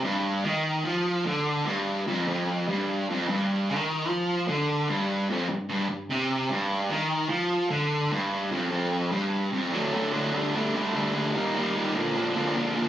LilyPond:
\new Staff \with { instrumentName = "Distorted electric guitar" } { \clef bass \time 4/4 \key g \minor \tempo 4 = 149 g,4 ees4 f4 d4 | g,4 f,8 f,4 g,4 f,8 | g,4 ees4 f4 d4 | g,4 f,8 g,8 g,8 g,8 c4 |
g,4 ees4 f4 d4 | g,4 f,8 f,4 g,4 f,8 | <d fis a d'>8 <d fis a d'>8 <d fis a d'>8 <d g a d'>8 <d g a d'>8 <d g a d'>8 <d g a d'>8 <d g a d'>8 | <ees g bes ees'>8 <ees g bes ees'>8 <ees g bes ees'>8 <bes, d f bes d'>8 <bes, d f bes d'>8 <bes, d f bes d'>8 <bes, d f bes d'>8 <bes, d f bes d'>8 | }